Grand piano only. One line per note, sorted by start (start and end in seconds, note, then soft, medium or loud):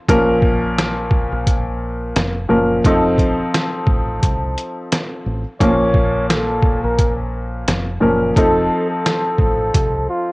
0.08 2.33 A#2 medium
0.08 2.33 F3 medium
0.08 2.33 C#4 medium
0.08 2.33 A#4 loud
2.49 2.81 A#2 medium
2.49 2.82 F3 medium
2.49 2.82 C#4 medium
2.49 2.82 A#4 medium
2.86 5.41 F3 medium
2.86 5.41 C4 medium
2.86 5.41 D#4 medium
2.86 5.41 A4 loud
5.60 7.84 A#2 medium
5.60 7.85 F3 medium
5.60 7.85 A#3 loud
5.60 7.85 C#4 medium
8.00 8.33 A#2 medium
8.00 8.33 F3 medium
8.00 8.34 C#4 medium
8.00 8.34 A#4 medium
8.37 10.32 F3 medium
8.37 10.32 C4 medium
8.37 10.32 D#4 medium
8.37 10.32 A4 loud